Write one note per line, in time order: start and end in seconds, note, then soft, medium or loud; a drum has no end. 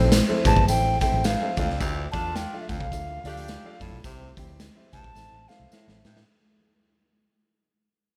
0.00 0.20 A#1 medium
0.00 0.16 C4 medium
0.00 0.16 E4 medium
0.00 0.16 A4 medium
0.00 0.16 C5 medium
0.00 0.16 G5 loud
0.12 snare loud
0.12 closed hi-hat loud
0.12 tambourine loud
0.28 0.59 C4 medium
0.28 0.60 E4 medium
0.28 0.60 A4 medium
0.28 0.60 C5 medium
0.28 0.60 E5 medium
0.28 muted conga soft
0.28 high conga medium
0.45 0.54 A1 medium
0.45 0.64 E2 medium
0.45 0.67 A5 loud
0.45 kick loud
0.45 closed hi-hat medium
0.45 tambourine medium
0.45 low conga medium
0.57 0.66 G1 medium
0.57 kick loud
0.57 high conga medium
0.68 1.03 A1 medium
0.68 0.93 C4 medium
0.68 0.93 E4 medium
0.68 0.93 A4 medium
0.68 0.93 C5 medium
0.68 0.93 E5 medium
0.68 0.99 G5 loud
0.68 closed hi-hat medium
0.68 tambourine medium
0.86 muted conga soft
1.01 1.28 C4 medium
1.01 1.29 E4 medium
1.01 1.29 A4 medium
1.01 1.29 C5 medium
1.01 1.29 E5 loud
1.01 1.27 G5 medium
1.01 kick medium
1.01 closed hi-hat medium
1.01 tambourine medium
1.12 1.34 A1 loud
1.12 high conga medium
1.24 1.50 G2 medium
1.24 1.69 F5 medium
1.24 snare loud
1.24 closed hi-hat medium
1.24 tambourine medium
1.41 1.57 C4 medium
1.41 1.58 E4 medium
1.41 1.57 A4 medium
1.41 1.58 C5 medium
1.41 1.58 E5 medium
1.41 high conga medium
1.57 1.66 D2 loud
1.57 1.76 F2 medium
1.57 2.00 D4 medium
1.57 2.01 F4 medium
1.57 2.01 A4 medium
1.57 2.01 D5 medium
1.57 2.01 F5 loud
1.57 kick medium
1.57 closed hi-hat medium
1.57 tambourine medium
1.57 low conga medium
1.70 1.78 C#2 medium
1.70 snare soft
1.80 2.06 D2 loud
1.80 2.07 D2 loud
1.80 2.06 C4 loud
1.80 2.07 E4 loud
1.80 2.07 G4 loud
1.80 kick loud
1.80 closed hi-hat medium
1.80 tambourine loud
2.12 2.44 E2 medium
2.12 2.66 A3 medium
2.12 2.40 D4 medium
2.12 2.66 D4 loud
2.12 2.66 F4 loud
2.12 2.40 F4 medium
2.12 2.41 A4 medium
2.12 2.41 D5 medium
2.12 2.41 F5 medium
2.12 2.37 A5 loud
2.12 kick medium
2.12 closed hi-hat medium
2.12 tambourine medium
2.12 high conga medium
2.36 2.60 G5 loud
2.36 snare loud
2.36 closed hi-hat loud
2.36 tambourine medium
2.36 muted conga soft
2.53 2.84 D4 medium
2.53 2.84 F4 medium
2.53 2.84 A4 medium
2.53 2.84 D5 medium
2.53 2.84 F5 medium
2.53 muted conga soft
2.53 high conga medium
2.60 2.70 E5 medium
2.69 2.78 D2 medium
2.69 2.88 F2 medium
2.69 3.81 F5 loud
2.69 2.73 F#5 medium
2.69 kick loud
2.69 closed hi-hat medium
2.69 tambourine medium
2.69 low conga medium
2.80 2.90 C2 medium
2.80 kick loud
2.80 high conga medium
2.92 3.18 D2 medium
2.92 3.17 D4 medium
2.92 3.17 F4 medium
2.92 3.17 A4 medium
2.92 3.17 D5 medium
2.92 3.17 E5 medium
2.92 kick medium
2.92 closed hi-hat medium
2.92 tambourine medium
3.08 muted conga soft
3.24 3.55 D2 loud
3.24 3.78 A3 medium
3.24 3.52 D4 medium
3.24 3.78 D4 medium
3.24 3.52 F4 medium
3.24 3.78 G4 loud
3.24 3.53 A4 medium
3.24 3.52 D5 medium
3.24 3.53 F5 medium
3.24 closed hi-hat medium
3.24 tambourine medium
3.36 closed hi-hat medium
3.36 high conga medium
3.48 snare loud
3.48 closed hi-hat loud
3.48 tambourine medium
3.48 muted conga soft
3.64 3.95 D4 medium
3.64 3.96 F4 medium
3.64 3.96 A4 medium
3.64 3.96 D5 medium
3.64 3.96 F5 loud
3.64 muted conga soft
3.64 high conga medium
3.80 3.90 F2 medium
3.80 4.00 A2 medium
3.80 kick medium
3.80 open hi-hat medium
3.80 tambourine medium
3.80 low conga medium
3.92 4.02 B1 medium
4.04 4.30 C2 loud
4.04 4.31 C3 medium
4.04 4.29 C4 medium
4.04 4.29 E4 medium
4.04 4.29 G4 medium
4.04 4.29 C5 medium
4.04 4.29 E5 loud
4.04 kick loud
4.04 closed hi-hat medium
4.04 tambourine loud
4.37 4.68 D2 medium
4.37 4.64 C4 loud
4.37 4.64 E4 medium
4.37 4.64 G4 medium
4.37 4.65 C5 medium
4.37 4.65 G5 loud
4.37 kick medium
4.37 closed hi-hat medium
4.37 tambourine medium
4.37 high conga medium
4.60 snare loud
4.60 closed hi-hat medium
4.60 tambourine loud
4.75 5.07 C4 medium
4.75 5.07 E4 medium
4.75 5.07 G4 medium
4.75 5.07 C5 medium
4.75 5.07 E5 medium
4.75 high conga medium
4.92 5.02 C2 loud
4.92 5.12 G2 medium
4.92 5.50 A5 loud
4.92 kick loud
4.92 closed hi-hat medium
4.92 tambourine medium
4.92 low conga medium
5.04 5.14 A#1 medium
5.04 kick loud
5.04 high conga medium
5.14 5.29 A1 loud
5.14 5.40 C4 medium
5.14 5.40 E4 medium
5.14 5.40 A4 medium
5.14 5.40 C5 medium
5.14 5.40 E5 medium
5.14 snare medium
5.14 tambourine medium
5.14 muted conga soft
5.32 5.45 A1 medium
5.47 5.75 C4 medium
5.47 5.75 E4 medium
5.47 5.76 A4 medium
5.47 5.76 C5 medium
5.47 5.76 E5 medium
5.47 5.75 F5 medium
5.47 snare medium
5.47 tambourine soft
5.47 high conga soft
5.60 5.69 C2 loud
5.60 high conga medium
5.72 5.99 A2 medium
5.72 6.17 E5 medium
5.72 snare medium
5.72 tambourine loud
5.72 muted conga soft
5.88 6.01 A1 medium
5.88 6.19 C4 medium
5.88 6.19 E4 medium
5.88 6.19 A4 medium
5.88 6.19 C5 medium
5.88 6.19 E5 medium
5.88 snare medium
5.88 muted conga soft
5.88 high conga medium
6.04 6.24 G2 medium
6.04 6.23 A2 loud
6.04 snare loud
6.04 tambourine medium
6.04 low conga medium
6.16 snare loud
6.16 low conga medium